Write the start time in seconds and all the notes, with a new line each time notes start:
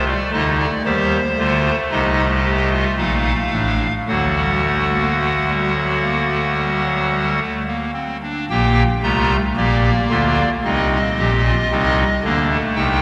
Already playing: C2 C3 A3 F4
0.08 D5
0.33 D2 D3 D#4 D#5
0.59 D5
0.85 D#2 D#3 G3 G4 C5
1.38 D2 D3 A3 F4
1.91 C2 C3 D#4 D#5
2.45 G4
2.71 F4
2.98 A#1 A#2 D#4 F5
3.52 A1 A2 D4
4.08 D2 D3 F#3 F#4 F#5
4.37 G3
4.65 A3
4.93 A#3
5.21 A3
5.49 G3
5.76 F#3
6.02 A#3
6.31 A3
6.58 G3
6.85 F#3
7.12 G3
7.40 A3
7.67 A#3
7.94 C4
8.22 D4
8.50 A#1 A#2 A#3 G4 G5
9.03 C2 C3 A3 F4 A#5
9.57 A#1 A#2 A#3 G4 D5
10.10 D2 D3 F4
10.64 C2 C3 C4 D#4 D#5
11.18 A#1 A#2 G4
11.46 F4
11.71 C2 C3 C4 D#4
12.24 D2 D3 A#3 D4
12.50 A3
12.76 C2 C3 D#4 G5